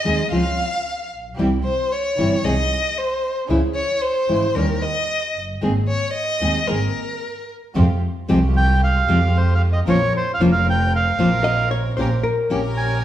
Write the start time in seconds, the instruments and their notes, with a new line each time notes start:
Already playing: violin D#5
0.04 double bass D#2, nylon-string guitar D#3 G#3 C4 D#4 G#4, string section C4 D#4 G#4
0.31 double bass C#2, nylon-string guitar C#3 F3 G#3 C4 F4, string section C4 C#4 F4, violin F5
1.11 double bass A#1
1.38 double bass C2, nylon-string guitar C3 E3 G3 C4 E4, string section C4 E4 G4
1.64 violin C5
1.92 violin C#5
2.16 double bass G1, nylon-string guitar C3 E3 G3 C4 E4, string section C4 E4 G4
2.43 double bass C2, nylon-string guitar C3 D#3 G#3 C4 G#4, string section C4 D#4 G#4, violin D#5
2.98 violin C5
3.48 double bass C#2, nylon-string guitar C#3 E3 G#3 C#4 E4, string section C#4 E4 G#4
3.75 violin C#5
4.02 violin C5
4.28 double bass G#1, nylon-string guitar C#3 E3 G#3 C#4 E4, string section C#4 E4 G#4
4.54 double bass D#2, nylon-string guitar D#3 G3 C#4 G4, string section C#4 D#4 G4, violin A#4
4.82 violin D#5
5.34 double bass F#1
5.61 double bass G#1, nylon-string guitar D#3 G#3 C4 G#4, string section A#3 C4 G#4
5.88 violin C#5
6.14 violin D#5
6.40 double bass D#2, nylon-string guitar D#3 G#3 C4 G#4, string section A#3 C4 G#4
6.67 double bass G#1, nylon-string guitar D#3 G#3 C4 G#4, string section A#3 C4 G#4, violin A#4
7.75 double bass F2, nylon-string guitar C3 F3 G#3 C4 G4, string section G#3 F4 G4
8.28 double bass C2, nylon-string guitar C3 F3 G#3 C4 G4, string section G#3 F4 G4
8.57 bandoneon G5
8.84 bandoneon F5
9.08 double bass F2, nylon-string guitar C3 F3 G#3 C4 G4, string section G#3 F4 G4
9.37 bandoneon C5
9.54 bandoneon F5
9.72 bandoneon D#5
9.86 double bass A#1, nylon-string guitar F3 A#3 C#4 F4 C5, string section C4 C#4 A#4, bandoneon C#5
10.17 bandoneon C5
10.34 bandoneon F5
10.39 double bass F1, nylon-string guitar F3 A#3 C#4 F4 C5, string section C4 C#4 A#4
10.52 bandoneon F5
10.70 bandoneon G5
10.96 bandoneon F5
11.18 double bass A#1, nylon-string guitar F3 A#3 C#4 F4 C5, string section C4 C#4 A#4
11.44 hollow-body jazz guitar D#5
11.71 hollow-body jazz guitar C#5
11.96 double bass A#1, nylon-string guitar A#3 C#4 G4, string section C#4 G4 A#4, hollow-body jazz guitar C5
12.23 hollow-body jazz guitar A#4
12.49 double bass A#1, nylon-string guitar A#3 C#4 G4, string section C#4 G4 A#4
12.77 bandoneon G#5